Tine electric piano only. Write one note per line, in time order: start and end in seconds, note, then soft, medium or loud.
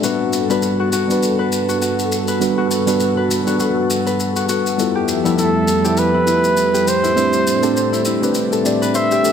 0.02 0.45 G3 medium
0.02 0.46 B3 medium
0.02 0.46 D4 medium
0.02 0.46 F#4 medium
0.02 0.46 B4 medium
0.49 1.05 G3 medium
0.49 1.05 B3 medium
0.49 1.05 D4 medium
0.49 1.06 F#4 medium
0.49 1.06 B4 medium
1.07 2.37 G3 medium
1.07 2.38 B3 medium
1.07 2.38 D4 medium
1.07 2.39 F#4 medium
1.12 2.39 B4 medium
2.40 2.83 G3 medium
2.40 2.83 B3 medium
2.40 2.83 D4 medium
2.40 2.84 F#4 medium
2.40 2.84 B4 medium
2.86 3.42 G3 medium
2.86 3.43 B3 medium
2.86 3.43 D4 medium
2.86 3.43 F#4 medium
2.86 3.43 B4 medium
3.44 4.74 G3 medium
3.44 4.75 B3 medium
3.44 4.75 D4 medium
3.44 4.76 F#4 medium
3.49 4.77 B4 medium
4.78 5.21 G3 medium
4.78 5.21 B3 medium
4.78 5.21 E4 medium
4.78 5.22 F4 medium
4.78 5.22 A4 medium
5.24 5.81 F3 medium
5.24 5.80 G3 medium
5.24 5.80 B3 medium
5.24 5.81 E4 medium
5.24 5.81 A4 medium
5.83 6.86 F3 medium
5.83 6.84 G3 medium
5.83 6.85 B3 medium
5.83 6.85 E4 medium
5.87 6.86 A4 medium
7.15 7.58 A3 medium
7.15 7.59 C4 medium
7.15 7.59 D4 medium
7.15 7.59 G4 medium
7.15 7.59 C5 medium
7.62 8.18 A3 medium
7.62 8.18 C4 medium
7.62 8.18 D4 medium
7.62 8.19 G4 medium
7.62 8.19 C5 medium
8.21 8.62 A3 medium
8.21 8.62 C4 medium
8.21 8.62 D4 medium
8.21 8.63 G4 medium
8.21 8.63 B4 medium
8.64 9.21 A3 medium
8.64 9.21 C4 medium
8.64 9.21 D4 medium
8.64 9.22 G4 medium
8.64 9.22 D5 medium
9.23 9.32 A3 medium
9.23 9.32 C4 medium
9.23 9.32 D4 medium
9.23 9.32 G4 medium
9.23 9.32 A4 medium